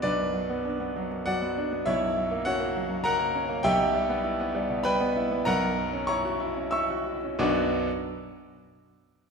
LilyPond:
<<
  \new Staff \with { instrumentName = "Grand piano" } { \time 3/4 \key b \minor \tempo 4 = 98 <d' b' d''>2 <fis' d'' fis''>4 | <e' cis'' e''>4 <fis' cis'' fis''>4 <ais' fis'' ais''>4 | <g' e'' g''>2 <b' g'' b''>4 | <ais' fis'' ais''>4 <cis'' ais'' cis'''>4 <e'' cis''' e'''>4 |
<b,, fis, fis b d' fis' d'''>8 r2 r8 | }
  \new Staff \with { instrumentName = "Grand piano" } { \time 3/4 \key b \minor b,,16 fis,16 fis16 b16 d'16 b16 fis16 fis,16 fis16 b16 d'16 b16 | b,,16 fis,16 fis16 ais16 cis'16 ais16 fis16 fis,16 fis16 ais16 cis'16 ais16 | b,,16 b,16 g16 b16 e'16 b16 g16 b,16 g16 b16 e'16 b16 | b,,16 fis,16 fis16 cis'16 e'16 fis'16 e'16 cis'16 e'16 fis'16 e'16 cis'16 |
r2. | }
>>